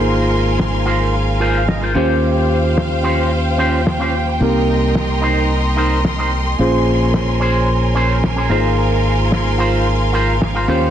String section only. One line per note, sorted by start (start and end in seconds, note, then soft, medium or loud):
0.00 1.92 A#4 medium
0.00 1.94 F5 medium
0.00 1.92 G#5 medium
0.00 1.92 C6 medium
1.95 4.39 C5 medium
1.95 4.39 F5 medium
1.95 6.55 G5 medium
4.41 6.57 A#4 medium
4.41 6.57 D#5 medium
4.41 8.46 C6 medium
6.59 8.49 C#4 medium
6.59 10.65 A#4 medium
6.59 10.65 G#5 medium
8.50 10.90 F5 medium
8.50 10.66 C6 medium
10.68 10.90 C5 medium
10.68 10.90 G5 medium